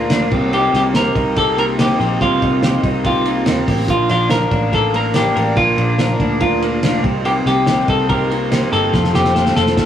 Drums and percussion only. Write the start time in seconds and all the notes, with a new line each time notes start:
0.10 snare, ride
0.31 kick, crash
0.53 ride
0.74 snare, ride
0.94 snare, ride
1.16 kick, ride
1.36 kick, ride
1.58 ride
1.79 snare, ride
2.01 ride
2.21 kick, ride
2.42 kick, ride
2.63 snare, ride
2.84 kick, ride
3.05 kick, ride
3.25 ride
3.46 snare, ride
3.68 kick, open hi-hat, ride
3.88 kick, hi-hat pedal, ride
4.09 snare, ride
4.30 snare, ride
4.51 kick, ride
4.73 kick, ride
4.94 ride
5.14 snare, ride
5.37 ride
5.57 kick, ride
5.78 ride
5.98 snare, ride
6.20 kick, ride
6.41 kick, ride
6.62 ride
6.83 snare, ride
7.04 kick, ride
7.25 ride
7.47 snare, ride
7.67 snare, ride
7.88 kick, ride
8.10 kick, ride
8.31 ride
8.52 snare, ride
8.73 ride
8.94 kick, snare
9.04 snare
9.14 snare
9.25 snare
9.35 snare
9.46 snare
9.56 snare
9.67 snare
9.77 kick, snare